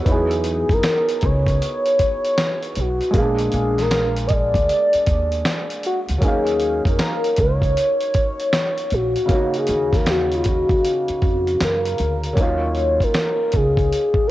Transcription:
Already playing: F#4
0.03 F#3 B3, kick, closed hi-hat
0.07 E2 D#4 E4 G#4
0.12 G#4
0.31 closed hi-hat
0.44 closed hi-hat
0.70 F#2 A#4, kick, closed hi-hat
0.83 snare, closed hi-hat
1.09 closed hi-hat
1.21 C#2 C#5, kick, closed hi-hat
1.46 kick, closed hi-hat
1.62 closed hi-hat
1.85 closed hi-hat
1.99 kick, closed hi-hat
2.24 closed hi-hat
2.38 snare, closed hi-hat
2.63 closed hi-hat
2.75 B1 F#4, closed hi-hat
3.01 closed hi-hat
3.11 A#1 G#3 A#3, kick, closed hi-hat
3.15 B3 G#4 F5
3.20 D4 G#4
3.39 closed hi-hat
3.52 A#1, closed hi-hat
3.78 A#4, snare, closed hi-hat
3.91 snare, closed hi-hat
4.17 closed hi-hat
4.27 D#5, kick, closed hi-hat
4.33 D5
4.54 D2, kick, closed hi-hat
4.69 closed hi-hat
4.93 muted upright bass stroke, closed hi-hat
5.06 D#2, kick, closed hi-hat
5.32 closed hi-hat
5.45 snare, closed hi-hat
5.70 closed hi-hat
5.83 F#4, closed hi-hat
6.08 D2, closed hi-hat
6.18 F#3 A#3, kick, closed hi-hat
6.22 D#2 C#4 D#4 G#4
6.27 F5
6.46 closed hi-hat
6.59 closed hi-hat
6.85 F2 A#4, kick, closed hi-hat
6.99 snare, closed hi-hat
7.24 closed hi-hat
7.37 C#2 C#5, kick, closed hi-hat
7.62 kick, closed hi-hat
7.77 closed hi-hat
8.01 closed hi-hat
8.14 kick, closed hi-hat
8.39 closed hi-hat
8.53 snare, closed hi-hat
8.77 closed hi-hat
8.90 A#1 F#4, closed hi-hat
9.16 closed hi-hat
9.26 C#3 A#3, kick, closed hi-hat
9.30 C#4 D#4
9.35 F#4
9.54 G#4, closed hi-hat
9.67 D#2, closed hi-hat
9.93 A#4, kick, snare, closed hi-hat
10.06 F#4, snare, closed hi-hat
10.32 F4, closed hi-hat
10.44 F#4, kick, closed hi-hat
10.69 D#2, kick, closed hi-hat
10.85 closed hi-hat
11.08 muted upright bass stroke, closed hi-hat
11.22 F2, kick, closed hi-hat
11.47 closed hi-hat
11.61 F#2 A#4, snare, closed hi-hat
11.86 closed hi-hat
11.98 D2, closed hi-hat
12.24 closed hi-hat
12.33 F#3 A#3, kick, closed hi-hat
12.38 D#2 C#4 D#4 C#5
12.42 F4
12.75 closed hi-hat
13.00 A#4, kick, closed hi-hat
13.14 snare, closed hi-hat
13.52 C#2 G#4, kick, closed hi-hat
13.77 kick, closed hi-hat
13.93 closed hi-hat
14.14 kick
14.27 B4

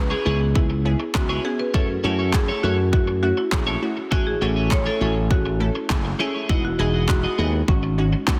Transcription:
Already playing: C#2 B3 C#4 E4 G#4
0.10 B3 E4 G#4 C#5
0.25 C#2 B3 C#4 E4 G#4 C#5
0.40 muted clean electric guitar stroke
0.55 B3 C#4 E4 G#4, muted clean electric guitar stroke, kick
0.70 muted clean electric guitar stroke
0.85 B3 C#4 E4 G#4
1.00 muted clean electric guitar stroke
1.15 C#2 B3 C#4 E4 F#4 G#4, muted clean electric guitar stroke, kick, clap
1.29 B3 E4 G#4 C#5
1.44 B3 C#4 E4 G#4, muted clean electric guitar stroke
1.59 B4, muted clean electric guitar stroke
1.74 F#2 A3 C#4 E4 F#4 A4 C#5, kick
1.89 muted clean electric guitar stroke
2.04 F#2 A3 C#4 E4 F#4 A4 C#5
2.19 C#4 E4 A4 C#5
2.33 A3 C#4 E4 F#4 G#4, kick, clap
2.48 C#4 E4 A4 C#5
2.63 F#2 A3 C#4 E4 F#4 A4 C#5
2.78 muted clean electric guitar stroke
2.93 A3 C#4 E4 F#4, muted clean electric guitar stroke, kick
3.07 muted clean electric guitar stroke
3.23 A3 C#4 E4 F#4
3.37 E4, muted clean electric guitar stroke
3.52 A#1 A3 C#4 E4 G#4, muted clean electric guitar stroke, kick, clap
3.67 C#4 E4 A4 C#5
3.82 A3 C#4 E4 F#4, muted clean electric guitar stroke
3.97 muted clean electric guitar stroke
4.11 A1 A3 C#4 E4 F#4 G#4 C#5, kick
4.27 G#4, muted clean electric guitar stroke
4.41 A1 A3 C#4 E4 F#4 G#4 A4 C#5
4.56 A3 E4 G#4 C#5
4.71 A3 C#4 E4 G#4 C#5, muted clean electric guitar stroke, kick, clap
4.86 A3 E4 G#4 A4 C#5
5.01 A1 A3 C#4 E4 F#4 G#4 A4 C#5
5.16 muted clean electric guitar stroke
5.30 A3 C#4 E4 F#4 G#4, muted clean electric guitar stroke, kick
5.46 muted clean electric guitar stroke
5.60 A3 C#4 E4 A4
5.75 muted clean electric guitar stroke
5.90 F#1 A3 C#4 E4 G#4, muted clean electric guitar stroke, kick, clap
6.05 muted clean electric guitar stroke
6.19 A3 C#4 E4 G#4 C#5
6.34 A3 E4 G#4 C#5
6.49 E1 G#3 B3 D#4 E4 F#4 G#4 D#5, kick
6.64 F#4, muted clean electric guitar stroke
6.79 E1 G#3 B3 D#4 E4 F#4 G#4 D#5
6.94 B3 F#4 G#4 D#5
7.08 G#3 D#4 E4 F#4, kick, clap
7.24 B3 F#4 G#4 D#5
7.38 D#2 G#3 B3 D#4 E4 F#4 G#4 D#5
7.53 muted clean electric guitar stroke
7.68 G#1 G#3 C#4 D#4 F#4, muted clean electric guitar stroke, kick
7.83 muted clean electric guitar stroke
7.98 G#3 C#4 D#4 F#4
8.13 muted clean electric guitar stroke
8.27 D#2 G#3 C#4 D#4 F#4, muted clean electric guitar stroke, kick, clap

